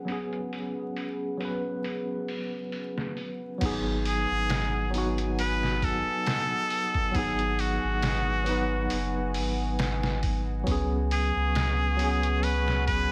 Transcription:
Already playing: C#4 G#4 B4 F#5
0.05 F#3 B3, open hi-hat
0.10 C#4 G#4
0.33 closed hi-hat
0.53 open hi-hat
0.96 open hi-hat
1.38 F#3 B3, open hi-hat
1.43 C#4 B4
1.84 open hi-hat
2.28 open hi-hat
2.72 open hi-hat
2.98 snare
3.17 open hi-hat
3.58 G#1 F#3 B3 B4 F#5 G#5 D#6, kick, open hi-hat, crash
3.63 D#4 G#4
4.05 G#4, open hi-hat
4.31 G#1
4.50 snare, open hi-hat
4.90 F#3 B3, open hi-hat
4.95 D#4 F#4
5.18 closed hi-hat
5.39 B4, open hi-hat
5.63 snare
5.82 A4, kick, open hi-hat
6.26 snare, open hi-hat
6.70 open hi-hat
6.95 kick
7.11 G#1 F#3 B3, kick, open hi-hat
7.16 D#4 G#4
7.39 closed hi-hat
7.59 F#4, open hi-hat
7.84 G#1
8.02 snare, open hi-hat
8.44 F#3 B3, open hi-hat
8.49 D#4 B4
8.90 F#1, open hi-hat
9.34 G#1, open hi-hat
9.79 snare, open hi-hat
10.03 snare
10.23 kick, open hi-hat
10.64 C#2 F#3 B3, kick, open hi-hat
10.68 C#4 G#4 F#5 C#6
11.11 G#4, open hi-hat
11.36 C#2
11.55 snare, open hi-hat
11.97 F#3 B3, open hi-hat
12.02 C#4 G#4
12.23 closed hi-hat
12.43 B4, open hi-hat
12.68 snare
12.87 B4, kick, open hi-hat

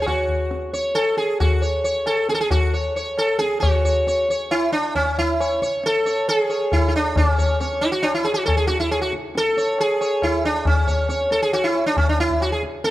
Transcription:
0.02 G#4
0.06 F#4, tabla na, tabla ge
0.28 tabla ge
0.51 tabla te
0.73 C#5, tabla te
0.95 A4, tabla na
1.17 G#4, tabla te
1.40 F#4, tabla na, tabla ge
1.62 C#5
1.84 C#5
2.06 A4, tabla na
2.29 G#4, tabla te
2.34 A4
2.41 G#4
2.51 F#4, tabla na, tabla ge
2.73 C#5
2.96 C#5
3.18 A4, tabla na
3.39 G#4, tabla te
3.60 F#4 C#5, tabla na, tabla ge
3.85 C#5, tabla ge
4.07 C#5, tabla te
4.28 C#5, tabla te
4.51 E4, tabla na
4.72 D4, tabla na
4.95 C#4, tabla na, tabla ge
5.18 E4, tabla ge
5.40 C#5, tabla na
5.62 C#5, tabla ke
5.84 A4, tabla te
6.06 C#5, tabla te
6.28 G#4, tabla na
6.49 C#5, tabla na
6.72 E4, tabla na, tabla ge
6.88 E4
6.95 D4, tabla ge
7.16 C#4, tabla na, tabla ge
7.38 C#5, tabla ge
7.60 C#5, tabla te
7.81 E4, tabla te
7.92 F#4
8.03 D4, tabla na
8.14 E4
8.24 G#4, tabla na
8.34 F#4
8.46 A4, tabla na, tabla ge
8.57 G#4
8.67 F#4, tabla te
8.80 E4, tabla ge
8.91 G#4, tabla na
9.02 F#4
9.13 tabla ke
9.35 A4, tabla te
9.57 C#5, tabla te
9.78 G#4, tabla na
10.01 C#5, tabla na
10.22 E4, tabla na, tabla ge
10.44 D4, tabla te
10.65 C#4, tabla na, tabla ge
10.87 C#5, tabla ge
11.09 C#5, tabla te
11.31 A4, tabla te
11.42 G#4
11.53 F#4, tabla na
11.64 E4
11.75 tabla na
11.86 D4
11.97 C#4, tabla na, tabla ge
12.09 D4
12.18 E4, tabla te
12.30 tabla ge
12.40 F#4, tabla na
12.52 G#4
12.63 tabla ke
12.84 A4, tabla te

